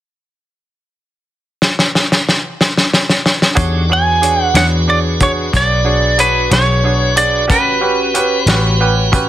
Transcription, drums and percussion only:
1.62 snare medium
1.79 snare medium
1.95 snare medium
2.12 snare medium
2.29 snare medium
2.61 snare medium
2.77 snare medium
2.93 snare medium
3.09 snare medium
3.26 snare medium
3.42 snare medium
3.56 kick loud
3.56 closed hi-hat medium
4.23 closed hi-hat medium
4.55 snare medium
4.55 closed hi-hat medium
5.20 kick medium
5.20 closed hi-hat medium
5.53 kick medium
5.53 snare soft
5.53 closed hi-hat medium
6.19 closed hi-hat medium
6.51 snare medium
6.51 closed hi-hat medium
7.17 closed hi-hat medium
7.50 kick loud
7.50 closed hi-hat medium
8.15 closed hi-hat soft
8.47 snare medium
8.47 closed hi-hat medium
9.13 kick medium
9.13 closed hi-hat medium

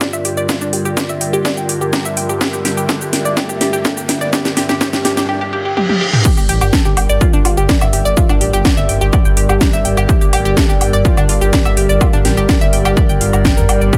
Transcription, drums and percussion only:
0.01 kick loud
0.01 snare medium
0.01 shaker medium
0.13 shaker medium
0.25 open hi-hat loud
0.25 shaker soft
0.37 shaker soft
0.49 kick loud
0.49 snare medium
0.49 shaker medium
0.61 shaker soft
0.73 open hi-hat loud
0.85 shaker soft
0.97 kick loud
0.97 snare medium
0.97 shaker medium
1.09 shaker soft
1.21 open hi-hat loud
1.21 shaker soft
1.33 shaker soft
1.45 kick loud
1.45 snare medium
1.45 shaker medium
1.57 shaker soft
1.69 open hi-hat loud
1.69 shaker soft
1.81 shaker soft
1.93 kick loud
1.93 snare medium
1.93 shaker medium
2.05 shaker medium
2.17 open hi-hat loud
2.17 shaker soft
2.29 shaker soft
2.41 kick loud
2.41 snare medium
2.41 shaker medium
2.53 shaker soft
2.65 snare medium
2.65 open hi-hat loud
2.77 shaker soft
2.89 kick loud
2.89 snare medium
2.89 shaker medium
3.01 shaker soft
3.13 snare medium
3.13 open hi-hat loud
3.13 shaker soft
3.25 shaker soft
3.37 kick loud
3.37 snare medium
3.37 shaker medium
3.49 shaker soft
3.61 snare medium
3.61 open hi-hat loud
3.61 shaker soft
3.73 shaker soft
3.85 kick loud
3.85 snare medium
3.85 shaker medium
3.97 shaker medium
4.09 snare medium
4.09 open hi-hat loud
4.09 shaker soft
4.21 shaker soft
4.33 kick loud
4.33 snare medium
4.33 shaker medium
4.45 snare medium
4.45 shaker soft
4.57 snare loud
4.57 open hi-hat loud
4.57 shaker soft
4.69 snare medium
4.69 shaker soft
4.81 kick loud
4.81 snare loud
4.81 shaker medium
4.93 snare medium
4.93 shaker soft
5.05 snare loud
5.05 open hi-hat loud
5.05 shaker soft
5.17 snare medium
5.17 shaker soft
5.77 high tom medium
5.89 high tom medium
6.13 mid tom medium
6.25 kick loud
6.25 crash loud
6.25 shaker medium
6.37 shaker soft
6.49 open hi-hat loud
6.61 low woodblock medium
6.61 shaker soft
6.73 kick loud
6.73 snare loud
6.73 shaker medium
6.85 shaker soft
6.97 open hi-hat medium
6.97 low woodblock medium
6.97 shaker soft
7.09 shaker soft
7.21 kick loud
7.21 shaker medium
7.33 shaker soft
7.45 open hi-hat loud
7.45 low woodblock medium
7.45 shaker soft
7.57 shaker soft
7.69 kick loud
7.69 snare loud
7.69 shaker medium
7.81 low woodblock medium
7.81 shaker medium
7.93 open hi-hat loud
7.93 shaker soft
8.05 shaker soft
8.17 kick loud
8.17 shaker medium
8.29 low woodblock medium
8.29 shaker soft
8.41 open hi-hat loud
8.53 shaker soft
8.65 kick loud
8.65 snare loud
8.65 low woodblock medium
8.65 shaker medium
8.77 shaker soft
8.89 open hi-hat medium
8.89 shaker soft
9.01 shaker soft
9.13 kick loud
9.13 low woodblock soft
9.13 shaker medium
9.25 shaker soft
9.37 open hi-hat loud
9.37 shaker soft
9.49 low woodblock medium
9.49 shaker soft
9.61 kick loud
9.61 snare loud
9.61 shaker medium
9.73 shaker medium
9.85 open hi-hat loud
9.85 shaker soft
9.97 low woodblock soft
9.97 shaker soft
10.09 kick loud
10.09 shaker medium
10.21 shaker soft
10.33 open hi-hat loud
10.33 low woodblock medium
10.45 shaker soft
10.57 kick loud
10.57 snare loud
10.57 shaker medium
10.69 shaker soft
10.81 open hi-hat loud
10.81 low woodblock medium
10.81 shaker soft
10.93 shaker soft
11.05 kick loud
11.05 shaker medium
11.17 low woodblock medium
11.17 shaker soft
11.29 open hi-hat loud
11.29 shaker soft
11.41 shaker soft
11.53 kick loud
11.53 snare loud
11.53 shaker medium
11.65 low woodblock medium
11.65 shaker medium
11.77 open hi-hat loud
11.77 shaker soft
11.89 shaker soft
12.01 kick loud
12.01 low woodblock medium
12.01 shaker medium
12.13 shaker soft
12.25 snare medium
12.25 open hi-hat loud
12.37 shaker soft
12.49 kick loud
12.49 snare loud
12.49 low woodblock medium
12.49 shaker medium
12.61 shaker soft
12.73 open hi-hat loud
12.73 shaker soft
12.85 low woodblock medium
12.85 shaker soft
12.97 kick loud
12.97 shaker medium
13.09 shaker soft
13.21 open hi-hat loud
13.21 shaker soft
13.33 low woodblock soft
13.33 shaker soft
13.45 kick loud
13.45 snare loud
13.45 shaker medium
13.57 shaker medium
13.69 open hi-hat medium
13.69 low woodblock medium
13.69 shaker soft
13.81 shaker soft
13.93 kick loud
13.93 shaker medium

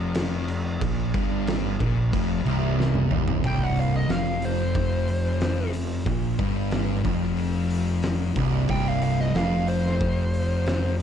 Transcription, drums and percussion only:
0.14 snare loud
0.14 crash loud
0.48 crash medium
0.81 kick loud
0.81 crash medium
1.14 kick loud
1.14 crash medium
1.47 snare loud
1.47 crash medium
1.80 kick loud
1.80 crash medium
2.13 kick loud
2.13 crash medium
2.46 crash medium
2.80 snare medium
2.95 high tom medium
3.11 mid tom loud
3.28 floor tom loud
3.44 kick loud
3.44 open hi-hat medium
3.76 open hi-hat medium
4.09 snare loud
4.09 open hi-hat medium
4.42 open hi-hat medium
4.74 kick loud
4.74 open hi-hat medium
5.08 open hi-hat medium
5.41 snare loud
5.41 open hi-hat medium
5.73 open hi-hat medium
6.06 kick loud
6.06 open hi-hat medium
6.39 kick loud
6.39 open hi-hat medium
6.71 snare loud
6.71 open hi-hat medium
7.04 kick loud
7.04 open hi-hat medium
7.22 snare soft
7.37 open hi-hat medium
7.70 open hi-hat medium
8.03 snare loud
8.03 open hi-hat medium
8.36 kick loud
8.36 open hi-hat medium
8.68 kick loud
8.68 open hi-hat medium
9.02 open hi-hat medium
9.19 snare soft
9.35 snare loud
9.35 open hi-hat medium
9.68 open hi-hat medium
9.86 snare soft
10.01 kick loud
10.01 open hi-hat medium
10.34 open hi-hat medium
10.66 snare loud
10.66 open hi-hat medium

